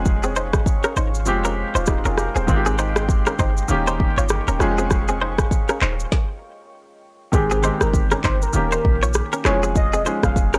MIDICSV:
0, 0, Header, 1, 7, 480
1, 0, Start_track
1, 0, Key_signature, -4, "major"
1, 0, Tempo, 606061
1, 46, Time_signature, 4, 2, 24, 8
1, 8385, End_track
2, 0, Start_track
2, 0, Title_t, "Ambient pad"
2, 0, Program_c, 0, 92
2, 0, Note_on_c, 0, 68, 86
2, 0, Note_on_c, 0, 73, 75
2, 0, Note_on_c, 0, 77, 79
2, 0, Note_on_c, 0, 85, 91
2, 987, Note_off_c, 0, 73, 0
2, 995, Note_off_c, 0, 68, 0
2, 995, Note_off_c, 0, 85, 0
2, 1005, Note_on_c, 0, 79, 74
2, 1006, Note_on_c, 0, 56, 74
2, 1006, Note_on_c, 0, 84, 89
2, 1946, Note_off_c, 0, 77, 0
2, 1956, Note_off_c, 0, 56, 0
2, 1956, Note_off_c, 0, 84, 0
2, 1966, Note_on_c, 0, 56, 81
2, 1966, Note_on_c, 0, 75, 75
2, 1966, Note_on_c, 0, 84, 87
2, 2907, Note_off_c, 0, 79, 0
2, 2917, Note_off_c, 0, 56, 0
2, 2917, Note_off_c, 0, 84, 0
2, 3629, Note_off_c, 0, 75, 0
2, 3645, Note_on_c, 0, 68, 86
2, 3645, Note_on_c, 0, 77, 75
2, 3645, Note_on_c, 0, 85, 95
2, 3646, Note_on_c, 0, 73, 77
2, 4834, Note_off_c, 0, 68, 0
2, 4834, Note_off_c, 0, 73, 0
2, 4834, Note_off_c, 0, 77, 0
2, 4834, Note_off_c, 0, 85, 0
2, 8385, End_track
3, 0, Start_track
3, 0, Title_t, "Soft synth lead"
3, 0, Program_c, 1, 80
3, 5815, Note_on_c, 1, 68, 105
3, 6015, Note_off_c, 1, 68, 0
3, 6194, Note_on_c, 1, 70, 71
3, 6276, Note_off_c, 1, 70, 0
3, 6534, Note_on_c, 1, 72, 81
3, 6649, Note_off_c, 1, 72, 0
3, 6673, Note_on_c, 1, 70, 73
3, 6755, Note_off_c, 1, 70, 0
3, 6774, Note_on_c, 1, 70, 101
3, 7127, Note_off_c, 1, 70, 0
3, 7493, Note_on_c, 1, 73, 88
3, 7609, Note_off_c, 1, 73, 0
3, 7734, Note_on_c, 1, 75, 111
3, 7935, Note_off_c, 1, 75, 0
3, 8113, Note_on_c, 1, 77, 86
3, 8195, Note_off_c, 1, 77, 0
3, 8385, End_track
4, 0, Start_track
4, 0, Title_t, "Clean electric guitar"
4, 0, Program_c, 2, 27
4, 187, Note_on_c, 2, 68, 82
4, 193, Note_on_c, 2, 60, 64
4, 259, Note_off_c, 2, 68, 0
4, 263, Note_off_c, 2, 60, 0
4, 288, Note_on_c, 2, 72, 82
4, 294, Note_on_c, 2, 63, 63
4, 388, Note_off_c, 2, 72, 0
4, 392, Note_off_c, 2, 63, 0
4, 667, Note_on_c, 2, 70, 68
4, 673, Note_on_c, 2, 61, 56
4, 739, Note_off_c, 2, 70, 0
4, 743, Note_off_c, 2, 61, 0
4, 768, Note_on_c, 2, 72, 78
4, 774, Note_on_c, 2, 63, 64
4, 868, Note_off_c, 2, 72, 0
4, 872, Note_off_c, 2, 63, 0
4, 1147, Note_on_c, 2, 70, 76
4, 1154, Note_on_c, 2, 61, 60
4, 1220, Note_off_c, 2, 70, 0
4, 1224, Note_off_c, 2, 61, 0
4, 1387, Note_on_c, 2, 72, 82
4, 1394, Note_on_c, 2, 63, 61
4, 1459, Note_off_c, 2, 72, 0
4, 1464, Note_off_c, 2, 63, 0
4, 1627, Note_on_c, 2, 70, 72
4, 1634, Note_on_c, 2, 61, 58
4, 1700, Note_off_c, 2, 70, 0
4, 1704, Note_off_c, 2, 61, 0
4, 1867, Note_on_c, 2, 68, 73
4, 1874, Note_on_c, 2, 60, 59
4, 1940, Note_off_c, 2, 68, 0
4, 1943, Note_off_c, 2, 60, 0
4, 2108, Note_on_c, 2, 68, 82
4, 2114, Note_on_c, 2, 60, 64
4, 2180, Note_off_c, 2, 68, 0
4, 2184, Note_off_c, 2, 60, 0
4, 2208, Note_on_c, 2, 72, 85
4, 2214, Note_on_c, 2, 63, 64
4, 2308, Note_off_c, 2, 72, 0
4, 2312, Note_off_c, 2, 63, 0
4, 2588, Note_on_c, 2, 70, 71
4, 2594, Note_on_c, 2, 61, 53
4, 2660, Note_off_c, 2, 70, 0
4, 2664, Note_off_c, 2, 61, 0
4, 2688, Note_on_c, 2, 72, 81
4, 2695, Note_on_c, 2, 63, 66
4, 2788, Note_off_c, 2, 72, 0
4, 2792, Note_off_c, 2, 63, 0
4, 3069, Note_on_c, 2, 72, 76
4, 3075, Note_on_c, 2, 63, 58
4, 3140, Note_off_c, 2, 72, 0
4, 3144, Note_off_c, 2, 63, 0
4, 3309, Note_on_c, 2, 73, 85
4, 3315, Note_on_c, 2, 65, 60
4, 3381, Note_off_c, 2, 73, 0
4, 3385, Note_off_c, 2, 65, 0
4, 3549, Note_on_c, 2, 70, 72
4, 3555, Note_on_c, 2, 61, 57
4, 3621, Note_off_c, 2, 70, 0
4, 3624, Note_off_c, 2, 61, 0
4, 3789, Note_on_c, 2, 68, 74
4, 3795, Note_on_c, 2, 60, 57
4, 3860, Note_off_c, 2, 68, 0
4, 3864, Note_off_c, 2, 60, 0
4, 4029, Note_on_c, 2, 68, 83
4, 4036, Note_on_c, 2, 60, 62
4, 4101, Note_off_c, 2, 68, 0
4, 4105, Note_off_c, 2, 60, 0
4, 4130, Note_on_c, 2, 72, 85
4, 4136, Note_on_c, 2, 63, 65
4, 4229, Note_off_c, 2, 72, 0
4, 4233, Note_off_c, 2, 63, 0
4, 4509, Note_on_c, 2, 70, 70
4, 4515, Note_on_c, 2, 61, 53
4, 4580, Note_off_c, 2, 70, 0
4, 4584, Note_off_c, 2, 61, 0
4, 4610, Note_on_c, 2, 72, 83
4, 4617, Note_on_c, 2, 63, 64
4, 4709, Note_off_c, 2, 72, 0
4, 4714, Note_off_c, 2, 63, 0
4, 5949, Note_on_c, 2, 68, 80
4, 5955, Note_on_c, 2, 60, 62
4, 6021, Note_off_c, 2, 68, 0
4, 6025, Note_off_c, 2, 60, 0
4, 6049, Note_on_c, 2, 72, 86
4, 6056, Note_on_c, 2, 63, 63
4, 6149, Note_off_c, 2, 72, 0
4, 6153, Note_off_c, 2, 63, 0
4, 6429, Note_on_c, 2, 70, 70
4, 6436, Note_on_c, 2, 61, 55
4, 6501, Note_off_c, 2, 70, 0
4, 6505, Note_off_c, 2, 61, 0
4, 6530, Note_on_c, 2, 72, 82
4, 6536, Note_on_c, 2, 63, 62
4, 6629, Note_off_c, 2, 72, 0
4, 6633, Note_off_c, 2, 63, 0
4, 6909, Note_on_c, 2, 72, 77
4, 6916, Note_on_c, 2, 63, 61
4, 6981, Note_off_c, 2, 72, 0
4, 6985, Note_off_c, 2, 63, 0
4, 7149, Note_on_c, 2, 73, 84
4, 7156, Note_on_c, 2, 65, 63
4, 7221, Note_off_c, 2, 73, 0
4, 7225, Note_off_c, 2, 65, 0
4, 7388, Note_on_c, 2, 70, 77
4, 7395, Note_on_c, 2, 61, 57
4, 7460, Note_off_c, 2, 70, 0
4, 7464, Note_off_c, 2, 61, 0
4, 7629, Note_on_c, 2, 68, 74
4, 7635, Note_on_c, 2, 60, 56
4, 7700, Note_off_c, 2, 68, 0
4, 7704, Note_off_c, 2, 60, 0
4, 7869, Note_on_c, 2, 68, 82
4, 7875, Note_on_c, 2, 60, 62
4, 7940, Note_off_c, 2, 68, 0
4, 7944, Note_off_c, 2, 60, 0
4, 7969, Note_on_c, 2, 72, 85
4, 7976, Note_on_c, 2, 63, 63
4, 8069, Note_off_c, 2, 72, 0
4, 8073, Note_off_c, 2, 63, 0
4, 8348, Note_on_c, 2, 70, 70
4, 8355, Note_on_c, 2, 61, 56
4, 8385, Note_off_c, 2, 61, 0
4, 8385, Note_off_c, 2, 70, 0
4, 8385, End_track
5, 0, Start_track
5, 0, Title_t, "Grand piano"
5, 0, Program_c, 3, 0
5, 0, Control_c, 3, 64, 127
5, 0, Note_on_c, 3, 53, 86
5, 0, Note_on_c, 3, 56, 84
5, 0, Note_on_c, 3, 61, 80
5, 0, Note_on_c, 3, 68, 97
5, 661, Note_off_c, 3, 53, 0
5, 664, Note_off_c, 3, 56, 0
5, 667, Note_off_c, 3, 61, 0
5, 671, Note_off_c, 3, 68, 0
5, 995, Note_on_c, 3, 53, 88
5, 1001, Note_on_c, 3, 56, 82
5, 1008, Note_on_c, 3, 60, 81
5, 1014, Note_on_c, 3, 67, 97
5, 1017, Control_c, 3, 64, 0
5, 1176, Control_c, 3, 64, 127
5, 1250, Note_off_c, 3, 67, 0
5, 1385, Note_on_c, 3, 65, 61
5, 1481, Note_off_c, 3, 65, 0
5, 1486, Note_on_c, 3, 67, 69
5, 1490, Note_on_c, 3, 63, 61
5, 1618, Note_off_c, 3, 67, 0
5, 1621, Note_off_c, 3, 63, 0
5, 1626, Note_on_c, 3, 68, 67
5, 1631, Note_on_c, 3, 65, 59
5, 1646, Note_off_c, 3, 53, 0
5, 1649, Note_off_c, 3, 56, 0
5, 1652, Note_off_c, 3, 60, 0
5, 1721, Note_off_c, 3, 68, 0
5, 1724, Note_off_c, 3, 65, 0
5, 1726, Note_on_c, 3, 70, 70
5, 1731, Note_on_c, 3, 67, 61
5, 1858, Note_off_c, 3, 70, 0
5, 1861, Note_off_c, 3, 67, 0
5, 1866, Note_on_c, 3, 72, 64
5, 1871, Note_on_c, 3, 68, 56
5, 1956, Note_on_c, 3, 51, 89
5, 1963, Note_on_c, 3, 56, 81
5, 1969, Note_on_c, 3, 60, 82
5, 1976, Note_on_c, 3, 65, 76
5, 1977, Control_c, 3, 64, 0
5, 2028, Note_on_c, 3, 67, 92
5, 2031, Note_off_c, 3, 65, 0
5, 2093, Note_off_c, 3, 72, 0
5, 2096, Note_off_c, 3, 68, 0
5, 2113, Control_c, 3, 64, 127
5, 2821, Note_off_c, 3, 51, 0
5, 2825, Note_off_c, 3, 56, 0
5, 2828, Note_off_c, 3, 60, 0
5, 2857, Note_off_c, 3, 67, 0
5, 2916, Note_on_c, 3, 51, 89
5, 2923, Note_on_c, 3, 58, 80
5, 2929, Note_on_c, 3, 61, 80
5, 2935, Control_c, 3, 64, 0
5, 2936, Note_on_c, 3, 67, 100
5, 3098, Control_c, 3, 64, 127
5, 3566, Note_off_c, 3, 51, 0
5, 3570, Note_off_c, 3, 58, 0
5, 3573, Note_off_c, 3, 61, 0
5, 3576, Note_off_c, 3, 67, 0
5, 3636, Note_on_c, 3, 53, 94
5, 3643, Note_on_c, 3, 56, 82
5, 3650, Note_on_c, 3, 61, 83
5, 3656, Control_c, 3, 64, 0
5, 3656, Note_on_c, 3, 68, 103
5, 3813, Control_c, 3, 64, 127
5, 4501, Note_off_c, 3, 53, 0
5, 4505, Note_off_c, 3, 56, 0
5, 4508, Note_off_c, 3, 61, 0
5, 4511, Note_off_c, 3, 68, 0
5, 4857, Control_c, 3, 64, 0
5, 5797, Note_on_c, 3, 51, 75
5, 5803, Note_on_c, 3, 56, 69
5, 5810, Note_on_c, 3, 60, 70
5, 5816, Note_on_c, 3, 67, 83
5, 5944, Control_c, 3, 64, 127
5, 6017, Note_off_c, 3, 51, 0
5, 6020, Note_off_c, 3, 56, 0
5, 6023, Note_off_c, 3, 60, 0
5, 6026, Note_off_c, 3, 67, 0
5, 6036, Note_on_c, 3, 51, 78
5, 6043, Note_on_c, 3, 56, 71
5, 6049, Note_on_c, 3, 60, 71
5, 6056, Note_on_c, 3, 67, 85
5, 6744, Note_off_c, 3, 51, 0
5, 6756, Note_on_c, 3, 51, 79
5, 6762, Note_on_c, 3, 58, 72
5, 6764, Note_off_c, 3, 67, 0
5, 6765, Note_off_c, 3, 56, 0
5, 6768, Note_off_c, 3, 60, 0
5, 6769, Note_on_c, 3, 61, 70
5, 6774, Control_c, 3, 64, 0
5, 6775, Note_on_c, 3, 67, 88
5, 6928, Control_c, 3, 64, 127
5, 7406, Note_off_c, 3, 51, 0
5, 7409, Note_off_c, 3, 58, 0
5, 7413, Note_off_c, 3, 61, 0
5, 7416, Note_off_c, 3, 67, 0
5, 7478, Note_on_c, 3, 52, 66
5, 7484, Note_on_c, 3, 56, 74
5, 7490, Note_on_c, 3, 61, 73
5, 7496, Control_c, 3, 64, 0
5, 7497, Note_on_c, 3, 68, 85
5, 7529, Note_on_c, 3, 53, 80
5, 7542, Note_off_c, 3, 52, 0
5, 7612, Control_c, 3, 64, 127
5, 7915, Note_off_c, 3, 56, 0
5, 7918, Note_off_c, 3, 61, 0
5, 7922, Note_off_c, 3, 68, 0
5, 7937, Note_off_c, 3, 53, 0
5, 7957, Note_on_c, 3, 53, 75
5, 7964, Note_on_c, 3, 56, 73
5, 7970, Note_on_c, 3, 61, 74
5, 7976, Note_on_c, 3, 68, 84
5, 8385, Note_off_c, 3, 53, 0
5, 8385, Note_off_c, 3, 56, 0
5, 8385, Note_off_c, 3, 61, 0
5, 8385, Note_off_c, 3, 68, 0
5, 8385, End_track
6, 0, Start_track
6, 0, Title_t, "808-style bass"
6, 0, Program_c, 4, 38
6, 0, Note_on_c, 4, 29, 96
6, 470, Note_off_c, 4, 29, 0
6, 765, Note_on_c, 4, 32, 92
6, 1006, Note_on_c, 4, 29, 108
6, 1017, Note_off_c, 4, 32, 0
6, 1299, Note_off_c, 4, 29, 0
6, 1386, Note_on_c, 4, 27, 88
6, 1571, Note_off_c, 4, 27, 0
6, 1624, Note_on_c, 4, 29, 90
6, 1811, Note_off_c, 4, 29, 0
6, 1865, Note_on_c, 4, 27, 94
6, 1966, Note_on_c, 4, 32, 107
6, 1978, Note_off_c, 4, 27, 0
6, 2554, Note_off_c, 4, 32, 0
6, 2686, Note_on_c, 4, 31, 93
6, 2872, Note_off_c, 4, 31, 0
6, 2927, Note_on_c, 4, 27, 100
6, 3220, Note_off_c, 4, 27, 0
6, 3305, Note_on_c, 4, 31, 87
6, 3491, Note_off_c, 4, 31, 0
6, 3546, Note_on_c, 4, 27, 91
6, 3624, Note_off_c, 4, 27, 0
6, 3647, Note_on_c, 4, 29, 96
6, 4312, Note_off_c, 4, 29, 0
6, 4607, Note_on_c, 4, 27, 105
6, 4792, Note_off_c, 4, 27, 0
6, 5807, Note_on_c, 4, 32, 113
6, 6100, Note_off_c, 4, 32, 0
6, 6186, Note_on_c, 4, 31, 89
6, 6449, Note_off_c, 4, 31, 0
6, 6526, Note_on_c, 4, 31, 91
6, 6712, Note_off_c, 4, 31, 0
6, 6767, Note_on_c, 4, 27, 106
6, 6952, Note_off_c, 4, 27, 0
6, 7008, Note_on_c, 4, 34, 96
6, 7301, Note_off_c, 4, 34, 0
6, 7486, Note_on_c, 4, 29, 98
6, 7966, Note_off_c, 4, 29, 0
6, 8105, Note_on_c, 4, 29, 85
6, 8369, Note_off_c, 4, 29, 0
6, 8385, End_track
7, 0, Start_track
7, 0, Title_t, "Drums"
7, 44, Note_on_c, 9, 82, 67
7, 45, Note_on_c, 9, 36, 112
7, 124, Note_off_c, 9, 36, 0
7, 124, Note_off_c, 9, 82, 0
7, 184, Note_on_c, 9, 82, 53
7, 263, Note_off_c, 9, 82, 0
7, 284, Note_on_c, 9, 82, 57
7, 364, Note_off_c, 9, 82, 0
7, 423, Note_on_c, 9, 36, 98
7, 423, Note_on_c, 9, 37, 98
7, 425, Note_on_c, 9, 82, 51
7, 502, Note_off_c, 9, 36, 0
7, 502, Note_off_c, 9, 37, 0
7, 504, Note_off_c, 9, 82, 0
7, 523, Note_on_c, 9, 36, 109
7, 529, Note_on_c, 9, 82, 72
7, 603, Note_off_c, 9, 36, 0
7, 608, Note_off_c, 9, 82, 0
7, 663, Note_on_c, 9, 82, 57
7, 666, Note_on_c, 9, 37, 88
7, 743, Note_off_c, 9, 82, 0
7, 745, Note_off_c, 9, 37, 0
7, 764, Note_on_c, 9, 82, 58
7, 843, Note_off_c, 9, 82, 0
7, 908, Note_on_c, 9, 82, 49
7, 987, Note_off_c, 9, 82, 0
7, 997, Note_on_c, 9, 82, 81
7, 1076, Note_off_c, 9, 82, 0
7, 1146, Note_on_c, 9, 82, 56
7, 1226, Note_off_c, 9, 82, 0
7, 1390, Note_on_c, 9, 82, 58
7, 1469, Note_off_c, 9, 82, 0
7, 1476, Note_on_c, 9, 82, 82
7, 1486, Note_on_c, 9, 36, 96
7, 1487, Note_on_c, 9, 37, 97
7, 1555, Note_off_c, 9, 82, 0
7, 1565, Note_off_c, 9, 36, 0
7, 1566, Note_off_c, 9, 37, 0
7, 1625, Note_on_c, 9, 82, 49
7, 1705, Note_off_c, 9, 82, 0
7, 1723, Note_on_c, 9, 37, 86
7, 1728, Note_on_c, 9, 82, 58
7, 1802, Note_off_c, 9, 37, 0
7, 1807, Note_off_c, 9, 82, 0
7, 1868, Note_on_c, 9, 82, 47
7, 1947, Note_off_c, 9, 82, 0
7, 1966, Note_on_c, 9, 36, 110
7, 1966, Note_on_c, 9, 82, 67
7, 2045, Note_off_c, 9, 36, 0
7, 2045, Note_off_c, 9, 82, 0
7, 2106, Note_on_c, 9, 82, 55
7, 2185, Note_off_c, 9, 82, 0
7, 2206, Note_on_c, 9, 82, 56
7, 2285, Note_off_c, 9, 82, 0
7, 2345, Note_on_c, 9, 37, 102
7, 2347, Note_on_c, 9, 82, 52
7, 2424, Note_off_c, 9, 37, 0
7, 2426, Note_off_c, 9, 82, 0
7, 2445, Note_on_c, 9, 36, 110
7, 2451, Note_on_c, 9, 82, 72
7, 2524, Note_off_c, 9, 36, 0
7, 2530, Note_off_c, 9, 82, 0
7, 2585, Note_on_c, 9, 82, 59
7, 2588, Note_on_c, 9, 37, 94
7, 2665, Note_off_c, 9, 82, 0
7, 2667, Note_off_c, 9, 37, 0
7, 2685, Note_on_c, 9, 82, 59
7, 2686, Note_on_c, 9, 36, 82
7, 2764, Note_off_c, 9, 82, 0
7, 2765, Note_off_c, 9, 36, 0
7, 2829, Note_on_c, 9, 82, 52
7, 2909, Note_off_c, 9, 82, 0
7, 2918, Note_on_c, 9, 82, 83
7, 2997, Note_off_c, 9, 82, 0
7, 3068, Note_on_c, 9, 82, 56
7, 3147, Note_off_c, 9, 82, 0
7, 3168, Note_on_c, 9, 36, 93
7, 3247, Note_off_c, 9, 36, 0
7, 3311, Note_on_c, 9, 82, 57
7, 3390, Note_off_c, 9, 82, 0
7, 3397, Note_on_c, 9, 82, 84
7, 3408, Note_on_c, 9, 37, 100
7, 3476, Note_off_c, 9, 82, 0
7, 3487, Note_off_c, 9, 37, 0
7, 3547, Note_on_c, 9, 82, 51
7, 3626, Note_off_c, 9, 82, 0
7, 3644, Note_on_c, 9, 37, 88
7, 3649, Note_on_c, 9, 82, 59
7, 3723, Note_off_c, 9, 37, 0
7, 3728, Note_off_c, 9, 82, 0
7, 3788, Note_on_c, 9, 82, 48
7, 3868, Note_off_c, 9, 82, 0
7, 3886, Note_on_c, 9, 36, 110
7, 3886, Note_on_c, 9, 37, 95
7, 3886, Note_on_c, 9, 82, 66
7, 3965, Note_off_c, 9, 37, 0
7, 3966, Note_off_c, 9, 36, 0
7, 3966, Note_off_c, 9, 82, 0
7, 4026, Note_on_c, 9, 82, 57
7, 4105, Note_off_c, 9, 82, 0
7, 4264, Note_on_c, 9, 36, 99
7, 4265, Note_on_c, 9, 37, 99
7, 4267, Note_on_c, 9, 82, 53
7, 4344, Note_off_c, 9, 36, 0
7, 4344, Note_off_c, 9, 37, 0
7, 4346, Note_off_c, 9, 82, 0
7, 4365, Note_on_c, 9, 36, 109
7, 4371, Note_on_c, 9, 82, 75
7, 4444, Note_off_c, 9, 36, 0
7, 4450, Note_off_c, 9, 82, 0
7, 4505, Note_on_c, 9, 82, 58
7, 4508, Note_on_c, 9, 37, 94
7, 4585, Note_off_c, 9, 82, 0
7, 4587, Note_off_c, 9, 37, 0
7, 4606, Note_on_c, 9, 39, 92
7, 4685, Note_off_c, 9, 39, 0
7, 4750, Note_on_c, 9, 82, 51
7, 4829, Note_off_c, 9, 82, 0
7, 4847, Note_on_c, 9, 36, 104
7, 4848, Note_on_c, 9, 38, 87
7, 4926, Note_off_c, 9, 36, 0
7, 4927, Note_off_c, 9, 38, 0
7, 5807, Note_on_c, 9, 36, 113
7, 5807, Note_on_c, 9, 82, 70
7, 5886, Note_off_c, 9, 36, 0
7, 5886, Note_off_c, 9, 82, 0
7, 5947, Note_on_c, 9, 82, 55
7, 6026, Note_off_c, 9, 82, 0
7, 6046, Note_on_c, 9, 82, 60
7, 6126, Note_off_c, 9, 82, 0
7, 6185, Note_on_c, 9, 37, 98
7, 6187, Note_on_c, 9, 82, 53
7, 6264, Note_off_c, 9, 37, 0
7, 6266, Note_off_c, 9, 82, 0
7, 6285, Note_on_c, 9, 36, 106
7, 6290, Note_on_c, 9, 82, 74
7, 6364, Note_off_c, 9, 36, 0
7, 6369, Note_off_c, 9, 82, 0
7, 6425, Note_on_c, 9, 82, 61
7, 6428, Note_on_c, 9, 37, 97
7, 6504, Note_off_c, 9, 82, 0
7, 6507, Note_off_c, 9, 37, 0
7, 6526, Note_on_c, 9, 36, 79
7, 6526, Note_on_c, 9, 39, 97
7, 6526, Note_on_c, 9, 82, 59
7, 6605, Note_off_c, 9, 39, 0
7, 6605, Note_off_c, 9, 82, 0
7, 6606, Note_off_c, 9, 36, 0
7, 6670, Note_on_c, 9, 82, 53
7, 6749, Note_off_c, 9, 82, 0
7, 6757, Note_on_c, 9, 82, 81
7, 6837, Note_off_c, 9, 82, 0
7, 6907, Note_on_c, 9, 82, 56
7, 6986, Note_off_c, 9, 82, 0
7, 7008, Note_on_c, 9, 36, 91
7, 7087, Note_off_c, 9, 36, 0
7, 7152, Note_on_c, 9, 82, 59
7, 7231, Note_off_c, 9, 82, 0
7, 7238, Note_on_c, 9, 82, 87
7, 7248, Note_on_c, 9, 37, 98
7, 7317, Note_off_c, 9, 82, 0
7, 7328, Note_off_c, 9, 37, 0
7, 7388, Note_on_c, 9, 82, 53
7, 7467, Note_off_c, 9, 82, 0
7, 7485, Note_on_c, 9, 37, 88
7, 7485, Note_on_c, 9, 39, 87
7, 7490, Note_on_c, 9, 82, 55
7, 7564, Note_off_c, 9, 37, 0
7, 7564, Note_off_c, 9, 39, 0
7, 7569, Note_off_c, 9, 82, 0
7, 7629, Note_on_c, 9, 82, 49
7, 7708, Note_off_c, 9, 82, 0
7, 7727, Note_on_c, 9, 36, 114
7, 7728, Note_on_c, 9, 82, 69
7, 7806, Note_off_c, 9, 36, 0
7, 7807, Note_off_c, 9, 82, 0
7, 7867, Note_on_c, 9, 82, 56
7, 7946, Note_off_c, 9, 82, 0
7, 7966, Note_on_c, 9, 82, 57
7, 8046, Note_off_c, 9, 82, 0
7, 8105, Note_on_c, 9, 36, 101
7, 8105, Note_on_c, 9, 37, 100
7, 8107, Note_on_c, 9, 82, 51
7, 8184, Note_off_c, 9, 36, 0
7, 8184, Note_off_c, 9, 37, 0
7, 8186, Note_off_c, 9, 82, 0
7, 8205, Note_on_c, 9, 36, 113
7, 8210, Note_on_c, 9, 82, 72
7, 8284, Note_off_c, 9, 36, 0
7, 8290, Note_off_c, 9, 82, 0
7, 8345, Note_on_c, 9, 82, 58
7, 8348, Note_on_c, 9, 37, 97
7, 8385, Note_off_c, 9, 37, 0
7, 8385, Note_off_c, 9, 82, 0
7, 8385, End_track
0, 0, End_of_file